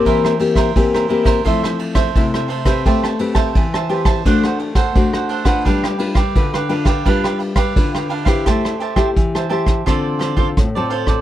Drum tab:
RD |x-xxx-xxx-xxx-xx|x-xxx-xxx-xxx-xx|x-xxx-xxx-xxx-xx|----------------|
HH |----------------|----------------|----------------|x-x-xxxxx-x-xxx-|
SD |-r-r-r-r-r-r-r-r|-r-r-r-r-r-r-r-r|-r-r-r-r-r-r-r-r|rr-r-r-rr-r-r--r|
BD |o--oo--oo--oo--o|o--oo--oo--oo--o|o--oo--oo--oo--o|o--oo--oo--oo--o|